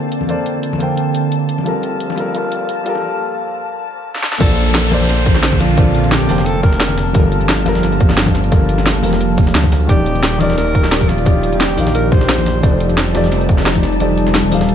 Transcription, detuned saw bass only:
0, 0, Header, 1, 2, 480
1, 0, Start_track
1, 0, Tempo, 342857
1, 407, Time_signature, 4, 2, 24, 8
1, 20649, End_track
2, 0, Start_track
2, 0, Title_t, "Detuned saw bass"
2, 0, Program_c, 0, 39
2, 0, Note_on_c, 0, 34, 100
2, 994, Note_off_c, 0, 34, 0
2, 1015, Note_on_c, 0, 34, 82
2, 1116, Note_off_c, 0, 34, 0
2, 1127, Note_on_c, 0, 29, 78
2, 2309, Note_off_c, 0, 29, 0
2, 2325, Note_on_c, 0, 31, 97
2, 3268, Note_off_c, 0, 31, 0
2, 3287, Note_on_c, 0, 31, 103
2, 4247, Note_off_c, 0, 31, 0
2, 6168, Note_on_c, 0, 34, 105
2, 7110, Note_off_c, 0, 34, 0
2, 7124, Note_on_c, 0, 34, 102
2, 8673, Note_off_c, 0, 34, 0
2, 8694, Note_on_c, 0, 34, 82
2, 8795, Note_off_c, 0, 34, 0
2, 8808, Note_on_c, 0, 29, 82
2, 9989, Note_off_c, 0, 29, 0
2, 10008, Note_on_c, 0, 31, 100
2, 10950, Note_off_c, 0, 31, 0
2, 10968, Note_on_c, 0, 31, 101
2, 12515, Note_off_c, 0, 31, 0
2, 12537, Note_on_c, 0, 31, 87
2, 12637, Note_off_c, 0, 31, 0
2, 12647, Note_on_c, 0, 29, 84
2, 13359, Note_off_c, 0, 29, 0
2, 13368, Note_on_c, 0, 38, 89
2, 13829, Note_off_c, 0, 38, 0
2, 13849, Note_on_c, 0, 27, 99
2, 14790, Note_off_c, 0, 27, 0
2, 14806, Note_on_c, 0, 27, 105
2, 16354, Note_off_c, 0, 27, 0
2, 16377, Note_on_c, 0, 27, 83
2, 16476, Note_off_c, 0, 27, 0
2, 16487, Note_on_c, 0, 34, 81
2, 17669, Note_off_c, 0, 34, 0
2, 17689, Note_on_c, 0, 29, 101
2, 18630, Note_off_c, 0, 29, 0
2, 18648, Note_on_c, 0, 29, 100
2, 20195, Note_off_c, 0, 29, 0
2, 20216, Note_on_c, 0, 29, 80
2, 20316, Note_off_c, 0, 29, 0
2, 20328, Note_on_c, 0, 27, 83
2, 20649, Note_off_c, 0, 27, 0
2, 20649, End_track
0, 0, End_of_file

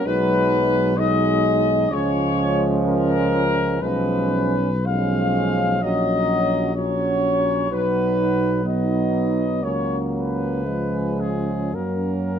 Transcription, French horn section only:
0, 0, Header, 1, 2, 480
1, 0, Start_track
1, 0, Key_signature, 6, "major"
1, 0, Tempo, 931677
1, 30, Time_signature, 4, 2, 24, 8
1, 1471, Tempo, 964630
1, 1951, Tempo, 1038062
1, 2431, Tempo, 947867
1, 4351, Tempo, 1005025
1, 5311, Tempo, 1102941
1, 6065, End_track
2, 0, Start_track
2, 0, Title_t, "French horn section"
2, 0, Program_c, 0, 60
2, 31, Note_on_c, 0, 63, 58
2, 495, Note_off_c, 0, 63, 0
2, 502, Note_on_c, 0, 63, 58
2, 973, Note_off_c, 0, 63, 0
2, 984, Note_on_c, 0, 61, 52
2, 1945, Note_off_c, 0, 61, 0
2, 1951, Note_on_c, 0, 61, 51
2, 2352, Note_off_c, 0, 61, 0
2, 2431, Note_on_c, 0, 61, 58
2, 2909, Note_off_c, 0, 61, 0
2, 2925, Note_on_c, 0, 61, 42
2, 3382, Note_off_c, 0, 61, 0
2, 3388, Note_on_c, 0, 61, 53
2, 3862, Note_off_c, 0, 61, 0
2, 3870, Note_on_c, 0, 63, 47
2, 4328, Note_off_c, 0, 63, 0
2, 4345, Note_on_c, 0, 63, 45
2, 4808, Note_off_c, 0, 63, 0
2, 4813, Note_on_c, 0, 61, 36
2, 5302, Note_off_c, 0, 61, 0
2, 5308, Note_on_c, 0, 61, 40
2, 5774, Note_off_c, 0, 61, 0
2, 5784, Note_on_c, 0, 61, 35
2, 6065, Note_off_c, 0, 61, 0
2, 6065, End_track
0, 0, End_of_file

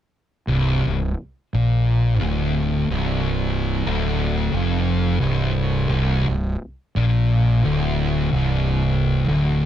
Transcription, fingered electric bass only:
0, 0, Header, 1, 2, 480
1, 0, Start_track
1, 0, Tempo, 677201
1, 339, Time_signature, 4, 2, 24, 8
1, 6843, End_track
2, 0, Start_track
2, 0, Title_t, "Fingered electric bass"
2, 0, Program_c, 0, 33
2, 340, Note_on_c, 0, 24, 93
2, 599, Note_off_c, 0, 24, 0
2, 612, Note_on_c, 0, 24, 70
2, 801, Note_off_c, 0, 24, 0
2, 1096, Note_on_c, 0, 34, 96
2, 1548, Note_off_c, 0, 34, 0
2, 1574, Note_on_c, 0, 26, 86
2, 2027, Note_off_c, 0, 26, 0
2, 2057, Note_on_c, 0, 24, 89
2, 2709, Note_off_c, 0, 24, 0
2, 2737, Note_on_c, 0, 26, 92
2, 3189, Note_off_c, 0, 26, 0
2, 3218, Note_on_c, 0, 29, 94
2, 3670, Note_off_c, 0, 29, 0
2, 3699, Note_on_c, 0, 24, 88
2, 4150, Note_off_c, 0, 24, 0
2, 4176, Note_on_c, 0, 24, 105
2, 4437, Note_off_c, 0, 24, 0
2, 4455, Note_on_c, 0, 24, 82
2, 4643, Note_off_c, 0, 24, 0
2, 4938, Note_on_c, 0, 34, 101
2, 5391, Note_off_c, 0, 34, 0
2, 5419, Note_on_c, 0, 26, 89
2, 5871, Note_off_c, 0, 26, 0
2, 5902, Note_on_c, 0, 24, 91
2, 6554, Note_off_c, 0, 24, 0
2, 6577, Note_on_c, 0, 26, 86
2, 6839, Note_off_c, 0, 26, 0
2, 6843, End_track
0, 0, End_of_file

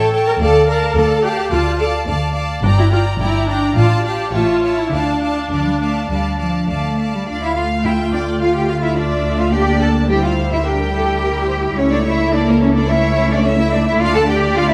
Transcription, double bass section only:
0, 0, Header, 1, 2, 480
1, 0, Start_track
1, 0, Key_signature, -1, "minor"
1, 0, Tempo, 561272
1, 347, Time_signature, 4, 2, 24, 8
1, 3710, Tempo, 584795
1, 6590, Tempo, 559180
1, 12504, End_track
2, 0, Start_track
2, 0, Title_t, "Double bass section"
2, 0, Program_c, 0, 48
2, 0, Note_on_c, 0, 33, 69
2, 270, Note_off_c, 0, 33, 0
2, 347, Note_on_c, 0, 38, 72
2, 745, Note_off_c, 0, 38, 0
2, 822, Note_on_c, 0, 38, 78
2, 1220, Note_off_c, 0, 38, 0
2, 1299, Note_on_c, 0, 38, 65
2, 1699, Note_off_c, 0, 38, 0
2, 1773, Note_on_c, 0, 38, 64
2, 2177, Note_off_c, 0, 38, 0
2, 2258, Note_on_c, 0, 31, 70
2, 2662, Note_off_c, 0, 31, 0
2, 2737, Note_on_c, 0, 31, 68
2, 3144, Note_off_c, 0, 31, 0
2, 3219, Note_on_c, 0, 33, 61
2, 3629, Note_off_c, 0, 33, 0
2, 3703, Note_on_c, 0, 33, 60
2, 4106, Note_off_c, 0, 33, 0
2, 4183, Note_on_c, 0, 38, 58
2, 4592, Note_off_c, 0, 38, 0
2, 4665, Note_on_c, 0, 38, 63
2, 5075, Note_off_c, 0, 38, 0
2, 5152, Note_on_c, 0, 38, 55
2, 5559, Note_off_c, 0, 38, 0
2, 5635, Note_on_c, 0, 38, 53
2, 6041, Note_off_c, 0, 38, 0
2, 6115, Note_on_c, 0, 38, 48
2, 9923, Note_off_c, 0, 38, 0
2, 9957, Note_on_c, 0, 37, 62
2, 11840, Note_off_c, 0, 37, 0
2, 11878, Note_on_c, 0, 38, 62
2, 12504, Note_off_c, 0, 38, 0
2, 12504, End_track
0, 0, End_of_file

